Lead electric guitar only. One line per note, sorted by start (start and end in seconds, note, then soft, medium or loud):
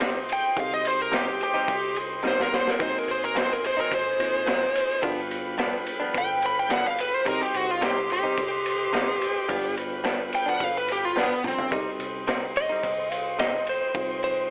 0.33 0.58 G5 medium
0.60 0.72 F5 medium
0.74 0.86 D#5 medium
0.88 1.00 C5 medium
1.02 1.15 A#4 medium
1.15 1.41 G4 medium
1.43 1.96 G4 medium
2.28 2.40 C5 medium
2.42 2.54 A#4 medium
2.55 2.70 C5 medium
2.70 2.82 A#4 medium
2.83 2.99 C5 medium
2.99 3.11 A#4 medium
3.11 3.23 C5 medium
3.25 3.37 A#4 medium
3.39 3.53 C5 loud
3.53 3.65 A#4 medium
3.67 3.79 C5 medium
3.81 3.93 A#4 medium
3.95 5.01 C5 loud
6.18 6.43 G5 medium
6.46 6.58 B5 medium
6.59 6.71 G5 medium
6.73 6.85 F#5 medium
6.87 6.99 F5 medium
7.00 7.14 B4 medium
7.14 7.27 C5 medium
7.28 7.41 A#4 medium
7.42 7.56 G4 medium
7.56 7.71 F#4 medium
7.71 7.83 F4 medium
7.85 8.11 G4 medium
8.13 9.75 G4 medium
10.35 10.48 G5 medium
10.49 10.64 F#5 medium
10.64 10.76 F5 medium
10.77 10.90 B4 medium
10.92 11.05 G4 medium
11.05 11.17 F4 medium
11.18 11.45 B3 medium
11.47 11.73 C4 loud